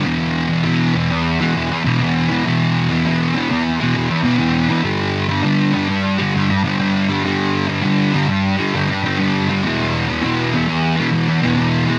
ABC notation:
X:1
M:4/4
L:1/16
Q:1/4=100
K:Em
V:1 name="Distorted electric guitar" clef=bass
[E,,B,,E,]3 [B,,E,] [E,,B,,E,]2 [E,,B,,E,]3 [B,,E,] [E,,B,,E,]2 [E,,B,,E,] [B,,E,]2 [B,,E,] | [E,,B,,E,]3 [B,,E,] [E,,B,,E,]2 [E,,B,,E,]3 [B,,E,] [E,,B,,E,]2 [E,,B,,E,] [B,,E,]2 [B,,E,] | [G,,D,G,]3 [D,G,] [G,,D,G,]2 [G,,D,G,]3 [D,G,] [G,,D,G,]2 [G,,D,G,] [D,G,]2 [D,G,] | [G,,D,G,]3 [D,G,] [G,,D,G,]2 [G,,D,G,]3 [D,G,] [G,,D,G,]2 [G,,D,G,] [D,G,]2 [D,G,] |
[E,,B,,E,]3 [B,,E,] [E,,B,,E,]2 [E,,B,,E,]3 [B,,E,] [E,,B,,E,]2 [E,,B,,E,] [B,,E,]2 [B,,E,] |]